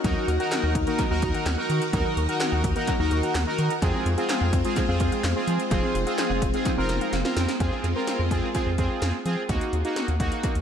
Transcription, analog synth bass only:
0.04 0.15 D#2 loud
0.28 0.38 D#2 loud
0.63 0.74 D#2 loud
0.75 0.86 D#2 medium
1.11 1.21 D#2 loud
1.22 1.33 D#2 loud
1.46 1.57 D#2 loud
1.70 1.80 D#3 loud
1.93 2.04 D#2 loud
2.17 2.27 D#2 medium
2.52 2.63 D#2 loud
2.64 2.75 D#2 medium
2.99 3.10 D#2 loud
3.11 3.22 D#2 loud
3.35 3.46 D#2 loud
3.59 3.69 D#3 loud
3.82 3.93 F2 loud
4.06 4.16 F2 loud
4.41 4.52 F2 loud
4.53 4.63 F2 loud
4.89 4.99 F2 loud
5.00 5.11 F2 loud
5.24 5.34 F2 loud
5.47 5.58 F3 loud
5.71 5.82 F1 loud
5.95 6.05 F1 medium
6.30 6.41 F1 loud
6.42 6.52 F1 loud
6.77 6.88 F1 loud
6.89 7.00 F1 loud
7.13 7.23 F1 loud
7.37 7.47 F2 loud
7.60 7.71 F2 loud
7.84 7.94 F2 medium
8.19 8.30 F2 loud
8.31 8.42 F2 medium
8.66 8.77 F2 medium
8.78 8.89 F2 loud
9.02 9.12 F2 loud
9.26 9.36 F3 medium
9.49 9.60 D#2 loud
9.73 9.83 D#2 loud
10.08 10.19 D#2 loud
10.20 10.30 D#2 medium
10.55 10.62 D#2 medium

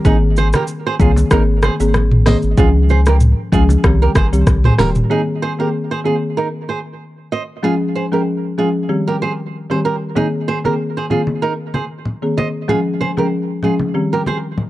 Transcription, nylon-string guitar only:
0.06 0.16 D#4 medium
0.06 0.15 G#4 loud
0.38 0.48 G#4 medium
0.38 0.47 C5 medium
0.55 0.63 G4 medium
0.55 0.63 A#4 medium
0.87 0.95 G#4 medium
0.87 0.94 C5 medium
1.01 1.11 F4 medium
1.01 1.10 G#4 medium
1.32 1.42 D#4 medium
1.32 1.42 A#4 medium
1.64 1.74 G#4 medium
1.64 1.73 C5 medium
2.27 2.37 C5 medium
2.27 2.36 D#5 medium
2.58 2.68 F4 medium
2.58 2.68 G#4 medium
2.90 3.00 G#4 medium
2.90 3.00 C5 medium
3.07 3.16 G4 medium
3.07 3.15 A#4 medium
3.53 3.63 F4 medium
3.53 3.63 G#4 medium
4.02 4.10 G4 medium
4.02 4.10 A#4 medium
4.16 4.26 G#4 medium
4.16 4.26 C5 medium
4.65 4.74 G#4 medium
4.65 4.73 C5 medium
4.79 4.90 G4 medium
4.79 4.89 A#4 medium
5.11 5.21 D#4 medium
5.11 5.20 G#4 medium
5.42 5.53 G#4 medium
5.42 5.52 C5 medium
5.60 5.68 G4 medium
5.60 5.68 A#4 medium
5.91 6.00 G#4 medium
5.91 5.99 C5 medium
6.06 6.16 F4 medium
6.06 6.15 G#4 medium
6.37 6.47 D#4 medium
6.37 6.47 A#4 medium
6.69 6.79 G#4 soft
6.69 6.78 C5 medium
7.32 7.42 C5 medium
7.32 7.42 D#5 medium
7.64 7.74 F4 medium
7.64 7.73 G#4 medium
7.95 8.05 G#4 medium
7.95 8.05 C5 medium
8.13 8.21 G4 medium
8.13 8.21 A#4 medium
8.58 8.69 F4 medium
8.58 8.68 G#4 medium
9.07 9.16 G4 medium
9.07 9.15 A#4 medium
9.22 9.32 G#4 medium
9.22 9.31 C5 medium
9.71 9.79 G#4 medium
9.71 9.79 C5 medium
9.85 9.95 G4 medium
9.85 9.94 A#4 medium
10.16 10.26 D#4 medium
10.16 10.26 G#4 medium
10.48 10.58 G#4 medium
10.48 10.57 C5 medium
10.65 10.74 G4 soft
10.65 10.73 A#4 medium
10.97 11.05 G#4 medium
10.97 11.05 C5 medium
11.11 11.21 F4 medium
11.11 11.20 G#4 medium
11.42 11.52 D#4 medium
11.42 11.52 A#4 medium
11.74 11.84 G#4 medium
11.74 11.84 C5 medium
12.38 12.48 C5 medium
12.38 12.47 D#5 medium
12.69 12.79 F4 medium
12.69 12.79 G#4 medium
13.01 13.11 G#4 medium
13.01 13.10 C5 medium
13.18 13.26 G4 medium
13.18 13.26 A#4 medium
13.64 13.74 F4 medium
13.64 13.73 G#4 medium
14.13 14.21 G4 medium
14.13 14.21 A#4 medium
14.27 14.37 G#4 medium
14.27 14.37 C5 medium

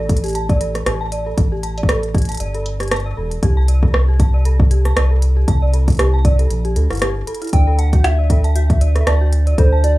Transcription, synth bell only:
0.24 0.28 G4 medium
0.35 0.44 A5 loud
0.49 0.60 D5 medium
0.61 0.69 A4 medium
0.86 0.92 G4 medium
1.01 1.08 A5 loud
1.12 1.25 D5 medium
1.26 1.33 A4 medium
1.52 1.56 G4 medium
1.63 1.72 A5 loud
1.78 1.88 D5 medium
1.89 1.98 A4 medium
2.15 2.20 G4 medium
2.29 2.36 A5 loud
2.40 2.53 D5 medium
2.55 2.61 A4 medium
2.80 2.84 G4 medium
2.91 3.00 A5 loud
3.06 3.16 D5 medium
3.17 3.26 A4 medium
3.43 3.48 G4 medium
3.57 3.64 A5 loud
3.68 3.81 D5 medium
3.83 3.90 A4 medium
4.08 4.12 G4 medium
4.20 4.28 A5 loud
4.34 4.44 D5 medium
4.45 4.54 A4 medium
4.71 4.76 G4 medium
4.85 4.92 A5 loud
4.97 5.10 D5 medium
5.11 5.18 A4 medium
5.37 5.41 G4 medium
5.48 5.57 A5 loud
5.62 5.73 D5 medium
5.73 5.82 A4 medium
5.99 6.04 G4 medium
6.14 6.20 A5 loud
6.25 6.38 D5 medium
6.39 6.46 A4 medium
6.65 6.69 G4 medium
6.76 6.85 A4 medium
6.90 7.01 E4 medium
7.02 7.10 G4 medium
7.27 7.36 A4 loud
7.42 7.49 E4 medium
7.53 7.66 D5 medium
7.67 7.74 A4 medium
7.79 7.87 A5 loud
7.93 7.97 F#4 medium
8.19 8.29 D5 medium
8.30 8.39 A4 medium
8.44 8.51 A5 loud
8.56 8.61 F#4 medium
8.81 8.94 D5 medium
8.96 9.02 A4 medium
9.07 9.16 A5 loud
9.21 9.25 F#4 medium
9.47 9.57 D5 medium
9.58 9.67 A4 medium
9.72 9.79 A5 loud
9.84 9.89 F#4 medium

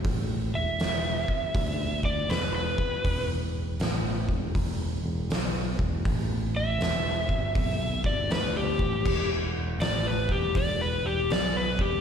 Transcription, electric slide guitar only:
0.55 2.01 E5 loud
2.05 2.29 D5 medium
2.30 2.54 B4 medium
2.55 3.28 B4 loud
6.56 8.02 E5 loud
8.06 8.30 D5 medium
8.31 8.55 B4 medium
8.57 9.29 G4 loud
9.81 10.05 D5 loud
10.07 10.31 B4 medium
10.31 10.55 G4 loud
10.56 10.80 D5 medium
10.81 11.05 B4 loud
11.06 11.30 G4 medium
11.32 11.56 D5 medium
11.57 11.80 B4 loud
11.81 12.01 G4 medium

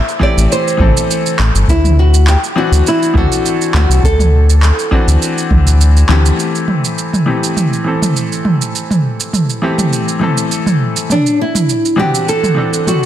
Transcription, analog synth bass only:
0.37 0.47 A1 medium
0.80 0.92 A1 loud
1.39 1.51 A1 medium
1.54 1.65 G1 medium
1.68 2.36 D2 loud
2.72 2.82 D2 medium
3.15 3.27 D2 medium
3.74 3.86 D2 loud
3.89 4.00 C2 medium
4.03 4.72 D2 loud
5.07 5.18 D2 medium
5.51 6.04 D2 medium
6.09 6.32 D2 medium

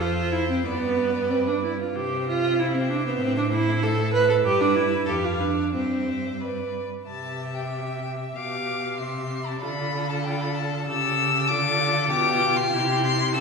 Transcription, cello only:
0.00 0.60 F2 medium
0.64 1.72 G2 medium
1.94 3.16 C3 medium
3.20 4.41 A2 medium
4.44 5.03 G2 medium
5.07 5.75 F2 medium
5.73 6.86 G2 medium
7.06 8.32 C3 medium
8.36 9.00 B2 medium
8.99 9.60 C3 medium
9.61 10.85 D3 medium
10.87 11.50 C#3 medium
11.49 12.09 D3 medium
12.10 12.71 B2 medium
12.72 13.35 C3 medium
13.34 13.40 C#3 medium

